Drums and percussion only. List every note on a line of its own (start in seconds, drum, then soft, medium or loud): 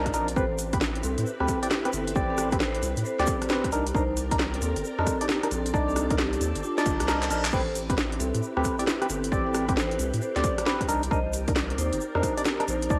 0.06 kick medium
0.06 cross-stick medium
0.06 closed hi-hat medium
0.14 open hi-hat loud
0.14 shaker medium
0.28 closed hi-hat medium
0.28 shaker soft
0.36 kick loud
0.36 shaker medium
0.59 open hi-hat loud
0.59 shaker medium
0.73 kick loud
0.73 closed hi-hat medium
0.73 shaker soft
0.81 snare loud
0.81 shaker medium
0.95 closed hi-hat soft
1.03 open hi-hat loud
1.03 shaker loud
1.18 closed hi-hat medium
1.18 shaker soft
1.27 shaker medium
1.40 cross-stick medium
1.48 kick medium
1.48 cross-stick medium
1.48 open hi-hat loud
1.48 shaker loud
1.63 closed hi-hat medium
1.63 shaker soft
1.71 snare loud
1.71 shaker soft
1.85 cross-stick medium
1.85 closed hi-hat medium
1.93 open hi-hat loud
1.93 shaker loud
2.07 closed hi-hat medium
2.07 shaker soft
2.16 kick loud
2.16 shaker soft
2.38 cross-stick medium
2.38 open hi-hat loud
2.38 shaker loud
2.52 kick loud
2.52 closed hi-hat medium
2.52 shaker soft
2.60 snare loud
2.60 shaker soft
2.75 closed hi-hat soft
2.83 open hi-hat loud
2.83 shaker medium
2.97 closed hi-hat medium
2.97 shaker soft
3.05 shaker medium
3.19 snare medium
3.19 open hi-hat medium
3.27 kick loud
3.27 open hi-hat loud
3.27 shaker loud
3.42 cross-stick medium
3.42 closed hi-hat medium
3.42 shaker soft
3.49 snare loud
3.49 shaker medium
3.64 kick medium
3.64 cross-stick medium
3.64 closed hi-hat medium
3.72 open hi-hat loud
3.72 shaker medium
3.87 closed hi-hat medium
3.87 shaker soft
3.95 kick loud
3.95 shaker soft
4.17 open hi-hat loud
4.17 shaker medium
4.31 kick loud
4.31 closed hi-hat medium
4.31 shaker soft
4.39 snare loud
4.39 shaker medium
4.54 closed hi-hat soft
4.62 open hi-hat loud
4.62 shaker loud
4.76 closed hi-hat medium
4.76 shaker soft
4.85 shaker medium
4.99 cross-stick medium
5.07 kick medium
5.07 cross-stick medium
5.07 open hi-hat loud
5.07 shaker medium
5.21 closed hi-hat medium
5.21 shaker soft
5.29 snare loud
5.29 shaker soft
5.43 cross-stick medium
5.43 closed hi-hat medium
5.51 open hi-hat loud
5.51 shaker medium
5.66 closed hi-hat medium
5.66 shaker soft
5.74 kick loud
5.74 shaker medium
5.89 shaker soft
5.96 cross-stick medium
5.96 open hi-hat loud
5.96 shaker medium
6.11 kick loud
6.11 closed hi-hat medium
6.11 shaker soft
6.19 snare loud
6.19 shaker medium
6.33 closed hi-hat soft
6.33 shaker soft
6.41 open hi-hat loud
6.41 shaker medium
6.55 closed hi-hat medium
6.55 shaker soft
6.63 shaker medium
6.78 snare medium
6.78 open hi-hat medium
6.78 shaker soft
6.86 kick loud
6.86 open hi-hat loud
6.86 shaker medium
7.00 cross-stick medium
7.00 closed hi-hat medium
7.00 shaker soft
7.08 snare loud
7.08 shaker medium
7.23 clap medium
7.23 closed hi-hat medium
7.23 shaker soft
7.30 open hi-hat loud
7.30 shaker medium
7.45 clap loud
7.45 closed hi-hat medium
7.45 shaker soft
7.53 kick loud
7.53 crash medium
7.53 shaker soft
7.75 open hi-hat loud
7.75 shaker medium
7.90 kick loud
7.90 closed hi-hat medium
7.90 shaker soft
7.98 snare loud
7.98 shaker medium
8.12 closed hi-hat soft
8.20 open hi-hat loud
8.20 shaker loud
8.35 closed hi-hat medium
8.35 shaker soft
8.43 shaker medium
8.57 cross-stick medium
8.64 kick medium
8.64 cross-stick medium
8.64 open hi-hat loud
8.64 shaker medium
8.79 closed hi-hat medium
8.79 shaker soft
8.87 snare loud
8.87 shaker medium
9.02 cross-stick medium
9.02 closed hi-hat medium
9.10 open hi-hat loud
9.10 shaker loud
9.24 closed hi-hat medium
9.24 shaker soft
9.32 kick loud
9.32 shaker medium
9.54 cross-stick medium
9.54 open hi-hat loud
9.54 shaker medium
9.69 kick loud
9.69 closed hi-hat medium
9.69 shaker soft
9.77 snare loud
9.77 shaker medium
9.91 closed hi-hat soft
9.99 open hi-hat loud
9.99 shaker loud
10.13 closed hi-hat medium
10.13 shaker soft
10.22 shaker medium
10.36 snare medium
10.36 open hi-hat medium
10.44 kick loud
10.44 open hi-hat loud
10.44 shaker loud
10.58 cross-stick medium
10.58 closed hi-hat medium
10.58 shaker soft
10.66 snare loud
10.66 shaker soft
10.81 kick medium
10.81 cross-stick medium
10.81 closed hi-hat medium
10.89 open hi-hat loud
10.89 shaker loud
11.03 closed hi-hat medium
11.03 shaker soft
11.11 kick loud
11.11 shaker medium
11.33 open hi-hat loud
11.33 shaker loud
11.48 kick loud
11.48 closed hi-hat medium
11.48 shaker soft
11.56 snare loud
11.56 shaker medium
11.70 closed hi-hat soft
11.78 open hi-hat loud
11.78 shaker loud
11.92 closed hi-hat medium
11.92 shaker soft
12.01 shaker medium
12.15 cross-stick medium
12.23 kick medium
12.23 cross-stick medium
12.23 open hi-hat loud
12.23 shaker medium
12.37 closed hi-hat medium
12.37 shaker soft
12.45 snare loud
12.45 shaker medium
12.60 cross-stick medium
12.60 closed hi-hat soft
12.68 open hi-hat loud
12.68 shaker loud
12.82 closed hi-hat medium
12.82 shaker soft
12.90 kick loud
12.90 shaker medium